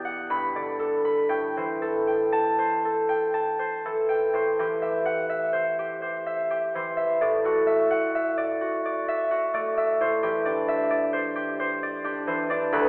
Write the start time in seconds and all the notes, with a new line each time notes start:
Already playing: E2 B2 G4 D5 G5
0.05 F#5
0.30 G2 B5
0.55 D3 D5
0.79 A4
1.05 B5
1.29 A2 G5
1.57 E3 C5
1.82 A4
2.07 G5
2.32 A5
2.59 C5
2.85 A4
3.09 G5
3.34 A5
3.59 C5
3.85 E3 A4
4.09 G5
4.33 A2 C5
4.59 E3 G4
4.82 E5
5.06 F#5
5.30 E5
5.53 C5
5.79 G4
6.02 C5
6.26 E5
6.51 G4
6.75 E3 C5
6.97 E5
7.21 A2 D5
7.44 A3 F#4
7.67 E5
7.91 F#5
8.15 E5
8.38 D5
8.61 F#4
8.86 D5
9.08 E5
9.31 F#4
9.54 A3 D5
9.77 E5
10.01 A2 C5
10.23 E3 G4
10.45 D4 D5
10.68 E5
10.90 D5
11.13 C5
11.35 G4
11.60 C5
11.83 D5
12.04 D4 G4
12.27 E3 C5
12.50 D4 D5
12.72 D2 B4